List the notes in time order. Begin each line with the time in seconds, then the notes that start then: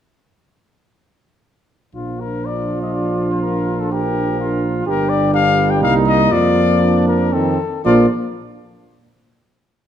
1.95 A#1 F3 D4 F4
2.20 A#4
2.45 F4 D5
2.82 D#5
2.94 D5
3.31 C5
3.42 A#4
3.80 A4
3.92 G4 A#4
4.40 F4
4.86 G1 G3 D4 G4 A#4
5.09 D5
5.34 D4 F5
5.70 G5
5.82 C2 A#3 D#4 F5
6.07 D#5
6.31 F2 F3 F4 D5
6.81 D4
7.07 A#4
7.32 D#3 C4 A4
7.85 A#1 F3 A#3 F4 D5